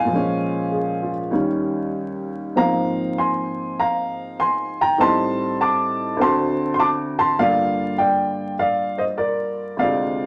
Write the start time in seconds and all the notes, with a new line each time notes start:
Already playing: C2 G2 A2 D#3 G3 C4 D#4 F4 F5 G#5
0.05 A#2 F3
0.12 G#3 C#4
0.71 G#4
1.02 F4
1.31 D#2 D#3 G3 C#4
2.55 G#2 F3 A#3 C4 F5 A#5
3.18 G#5 C6
3.80 F5 A#5
4.40 G#5 C6
4.81 G5 A#5
4.98 A2 G3 C4 D#4 A5 C6
5.61 A5 D6
6.17 D2 D3 C4
6.21 F#4 A5 C6
6.74 C6
6.80 A5 D6
7.19 A5 C6
7.38 G2 D3 A#3 F4 D5 F5
7.98 D5 G5
8.59 D5 F5
8.98 C5 D#5
9.17 A#4 D5
9.77 D2 C3 G#3 D5 F5
9.83 F4